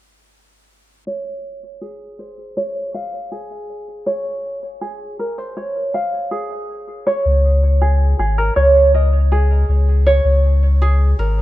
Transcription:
1.07 ukulele C#5
1.81 ukulele G#4
2.19 ukulele C5
2.57 ukulele C#5
2.94 ukulele F5
3.32 ukulele G#4
4.06 ukulele C#5
4.81 ukulele G#4
5.19 ukulele A#4
5.38 ukulele C5
5.57 ukulele C#5
5.94 ukulele F5
6.31 ukulele G#4
7.07 ukulele C#5
7.25 sub bass C#2
7.81 ukulele G#4
8.19 sub bass G#1, ukulele G#4
8.38 ukulele A#4
8.56 sub bass C#2, ukulele C#5
8.94 ukulele D#5
9.32 ukulele G#4
9.69 sub bass C#2
10.06 ukulele C#5
10.25 sub bass C#2
10.82 ukulele G#4
11.19 sub bass G#1, ukulele A#4

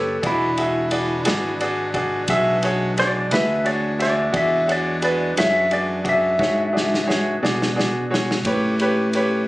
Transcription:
Already playing: fingered electric bass F#1, grand piano G4 B4 C#5, electric slide guitar A4
0.22 fingered electric bass E1, woodwind section E3 G#3 D4, grand piano F#4 G#4 D5, kick, ride
0.27 electric slide guitar E4
0.57 grand piano F#4 G#4 E5, ride
0.91 grand piano F#4 G#4 D5, ride
1.25 fingered electric bass G#1, grand piano F#4 G#4 D5, snare, ride
1.61 grand piano F#4 G#4 D5, ride
1.94 grand piano F#4 G#4 D5, kick, ride
2.28 fingered electric bass B1, grand piano F#4 G#4 E5, kick, ride
2.63 grand piano F#4 G#4 C#5, ride
2.97 grand piano F#4 G#4 D5, electric slide guitar D5, snare, ride
3.31 fingered electric bass D2, grand piano F#4 G#4 B4, electric slide guitar E5, snare, ride
3.65 grand piano F#4 G#4 C#5, electric slide guitar D5, ride
3.99 grand piano F#4 G#4 E5, electric slide guitar D5, ride
4.03 snare
4.33 fingered electric bass E2, grand piano F#4 G#4 D5, kick, ride
4.37 electric slide guitar E5
4.68 grand piano F#4 G#4 C#5, ride
4.72 electric slide guitar D5
5.02 grand piano F#4 G#4 B4, electric slide guitar D5, ride
5.37 fingered electric bass F#2, grand piano F#4 G#4 C#5, electric slide guitar E5, snare, ride
5.71 grand piano F#4 G#4 D5, electric slide guitar D5, ride
6.04 grand piano F#4 G#4 D5, kick, ride
6.09 electric slide guitar E5
6.39 fingered electric bass G#2, grand piano F#4 G#4 C#5, kick, snare
6.73 grand piano F#4 G#4 D5
6.77 snare
6.94 snare
7.07 grand piano F#4 G#4 C#5, snare
7.43 fingered electric bass B2, grand piano F#4 G#4 D5, snare
7.62 snare
7.76 grand piano F#4 G#4 D5, snare
8.11 grand piano F#4 G#4 C#5, snare
8.31 snare
8.45 fingered electric bass A2, woodwind section A3 C#4 G4, grand piano G4 B4 C#5, kick, ride
8.80 grand piano G4 B4 C#5, ride
9.13 grand piano G4 B4 C#5, ride

